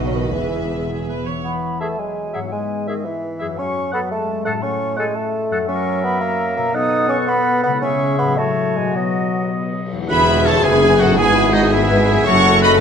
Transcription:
Already playing: B1 B2 A3 B3 D#4 F#4 A4 B4 D#5
0.06 F#3
0.15 D#3 E3
0.20 B3
0.25 E4
0.29 E2 E3 E4 G#4
0.33 E1 E5
0.90 G#4
1.09 B4
1.26 E3 C#5
1.31 B3
1.36 E4
1.40 E3 B3 G#4
1.44 B5
1.80 A3 G#4 E5 A5
1.97 F#3 G#3 G#5
2.33 G#2 F#3 G#4 E5 F#5
2.39 B3
2.43 E4
2.48 G#4 G#5
2.52 G#3
2.87 D#3 G#4 D#5 E5
3.05 E3 E5
3.39 F#2 G#4 E5
3.45 C#4
3.49 F#4
3.54 F#3 A4 C#6
3.58 C#4
3.92 B3 A4 F#5 B5
4.11 G#3 A3 A5
4.45 A2 A3 A4 F#5 A5
4.50 C#4
4.54 F#4
4.59 C#4 A4 C#6
4.63 A3
4.97 G#3 A4 F#5 G#5
5.15 A3 A5
5.50 F#2 A4 F#5
5.55 C#4
5.59 F#4
5.64 A#4 C#6
5.68 F#3 C#4 A#4 E5
6.03 B3 B5
6.21 A#3 A#5
6.57 B2 A#3 A#5
6.62 B3
6.66 F#4
6.71 B3 A4
6.75 D#4 A4 F#5 D#6
7.09 C#4 C#6
7.27 B3 B5
7.63 C#3 B3 B5
7.69 G#3
7.74 E4
7.78 C#3 C#4 G#4 C#6
7.84 G#4 E5
8.18 A2 B3 B5
8.25 F#3
8.29 F#4
8.34 A3 C#5 A5
8.38 F#4 C#5
8.76 B2 G#3 G#5
8.83 F#3
8.87 F#4
8.92 F#3 B3 D#5
8.96 D#5 F#5
9.93 E2
9.97 G#3
10.02 E4
10.06 E2 B3 E4 B4 B5, tam-tam
10.10 E1 G#4 E5 B5
10.46 A4 C#5 A5
10.63 F#1 F#2 B3 E4 G#4 B4 G#5
11.00 G#2 F#4 A4 F#5
11.04 B3
11.09 E4
11.13 G#2 B3 G#4 B4
11.18 G#1 E4 G#4 G#5
11.51 D#4 F#4 D#5
11.70 B3 E4 G#4 E5
11.89 B4
12.09 F#2 G#4
12.13 C#4
12.18 F#4
12.25 F#1 F#2 A3 C#4 F#4 A4 C#5 F#5 C#6
12.62 B4 D#5 B5

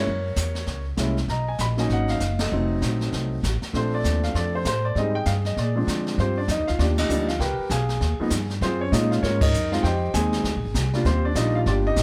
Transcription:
Already playing: A#4 C#5
0.05 F#2, brush sweep
0.36 E2, kick, snare, hi-hat pedal
0.55 snare
0.66 C#2, brush sweep, kick, snare
0.97 C2 G#3 A#3 C#4 E4, kick, snare, hi-hat pedal
1.17 snare
1.28 B1 D#5 A#5, brush sweep, kick, snare
1.48 G#5
1.58 A#1 B5, kick, snare, hi-hat pedal
1.77 F#3 A#3 C#4 D#4 G#5, snare
1.89 G#1 D#5 F#5, brush sweep, kick, snare
2.08 F5, snare
2.20 F#1, kick, snare, hi-hat pedal
2.39 A4 D#5, snare, ride
2.51 F1 F#3 A3 C4 D#4, brush sweep
2.82 A#1, kick, snare, hi-hat pedal
3.01 snare
3.12 C2, brush sweep, kick, snare
3.43 A1, kick, snare, hi-hat pedal
3.62 muted upright bass stroke, snare
3.73 A#1 F3 A3 C4 D4 A4 C5, brush sweep, kick, snare
3.94 D5
4.04 D#2, kick, snare, hi-hat pedal
4.23 F5, snare
4.34 F2 A4 D5, brush sweep, kick, snare
4.55 C5
4.65 A2 C5, kick, snare, hi-hat pedal
4.85 D5
4.95 G#2 G3 G#3 C4 D#4 D#5, brush sweep, kick, snare
5.00 G#4
5.15 G5
5.26 G2 F5, kick, snare, hi-hat pedal
5.45 D#5, snare
5.57 A#2 D5, brush sweep, kick, snare
5.61 G#4
5.76 F3 G#3 C4 D4
5.87 D3, kick, snare, hi-hat pedal
6.06 snare
6.18 G2 C4 F4 G4 C5, brush sweep, kick, snare
6.38 D4 D5
6.48 F2 D#4 D#5, kick, snare, hi-hat pedal
6.59 D#2
6.67 D2 F4 F5, snare
6.79 D#2 D4 F4 G4 D5, brush sweep, kick, snare
6.98 D#4 G4 D#5, snare, ride
7.09 D2 F3 G3 A#3 D4, hi-hat pedal
7.28 F4 F5, snare
7.39 C#2 G4 A#4 B4 G5, brush sweep, kick, snare
7.59 muted upright bass stroke
7.70 B1 G#4 F5 G#5, kick, snare, hi-hat pedal
7.89 snare
8.00 D#2, brush sweep, kick, snare
8.20 F3 A#3 B3 D#4, muted upright bass stroke
8.30 G2, kick, snare, hi-hat pedal
8.50 snare
8.61 F#2 C4 F4 G#4 C5, brush sweep, kick, snare
8.81 C#4 C#5
8.92 A#2 G#3 A#3 C#4 D#4 F4 D#5, kick, snare, hi-hat pedal
9.11 F4 F5, snare
9.23 G#2 C#4 F4 A#4 C#5, brush sweep, kick, snare
9.41 D#4 A#4 D#5, kick, crash
9.54 F#2, hi-hat pedal
9.71 G#3 C4 D#4 F4 F5, snare
9.83 F2 G4 C5 D#5 G5, brush sweep, kick, snare
10.14 D#2 G#3 C4 D#4 G#4 D#5 G#5, kick, snare, hi-hat pedal
10.32 snare
10.44 D2, brush sweep, kick, snare
10.55 A#1
10.65 G#1
10.74 C2, kick, snare, hi-hat pedal
10.93 G3 A#3 D4 F4, snare
11.05 D#2 C4 F4 G4 C5, brush sweep, kick, snare
11.25 D4 D5
11.35 A#1 G3 A#3 D4 D#4 F4 D#5, kick, snare, hi-hat pedal
11.55 F4 F5
11.66 G1 D4 F4 G4 D5, brush sweep, kick, snare
11.87 D#4 G4 D#5
11.96 G#1, kick, snare, hi-hat pedal

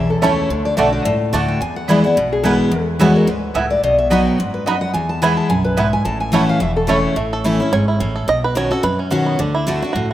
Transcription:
Already playing: B1 E2
0.10 A4
0.22 C#2 E3 A3 C#4 E4 C#5 A5
0.50 D2 D3
0.65 D5
0.77 B1 D3 A3 D4 F#4 D5 E5 A5
0.93 D5
1.04 C#2 A2 E5
1.33 D2 D3 A3 D4 F#4 D5 A5
1.48 G5
1.61 E2 G#5
1.76 F#5
1.88 E3 G#3 B3 E4 B4 D5 G#5
2.04 B3 E4 F#5
2.16 B1 B2
2.33 G#4
2.43 E3 G#3 B3 E4 B4 G#5
2.72 E2
2.99 E3 G#3 B3 E4 F#4 C#5 E5 G#5
3.16 A#4
3.27 D2 G#2 B4
3.54 C#2 A2 B3 E4 F#4 E5 G#5
3.70 D5
3.83 B1 B2 D#5
3.98 E5
4.10 F#3 B3 D#4 F#4 D#5 F#5 B5
4.25 G5
4.38 F#1 G#2 F#5
4.54 B4
4.66 F#2 B3 D#4 F#4 D#5 B5
4.81 F#5
4.94 E2 G#5
5.09 A5
5.22 E3 G#3 B3 E4 B4 G#5 B5
5.37 A5
5.49 B1 F#2 G#5
5.64 B4
5.77 G#2 B3 E4 B4 E5 G#5
5.93 G#5
6.05 A1 A2 A5
6.20 G#5
6.32 E3 A3 C#4 E4 C#5 F#5 A5
6.49 F5
6.60 E1 E2 E5
6.76 A4
6.87 E3 A3 C#4 E4 C#5 A5
7.16 A1 A2 A3
7.33 A4
7.44 E3 A3 C#4 E4
7.60 C#4 E4
7.72 G#1 G#2 C#5
7.88 E4
8.00 A1 A2 C#4
8.16 A4
8.28 B1 B2 D#5
8.44 B4
8.55 B2 D#3 C#4 F#4 C#5
8.71 C#4 F#4 A4
8.83 F#2 B4
8.99 C#4
9.11 B2 D#3 C#4 F#4
9.26 B3
9.39 D2 D3 D4
9.55 E4
9.67 D3 A3 D4 F#4
9.82 D4 F#4
9.93 C#2 A2 F#4

